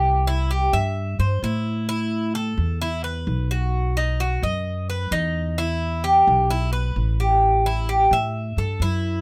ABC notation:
X:1
M:4/4
L:1/8
Q:1/4=130
K:Ador
V:1 name="Cuban tres"
G E G e2 c E2 | E2 A2 E B2 F- | F ^D F ^d2 B D2 | E2 G2 E B2 G- |
G E G e2 A E2 |]
V:2 name="Upright bass" clef=bass
C,,3 G,,2 G,, A,,2- | A,,3 E,,3 B,,,2- | B,,,3 F,,3 E,,2- | E,,3 B,,,3 A,,,2- |
A,,,3 A,,2 G,, F,,2 |]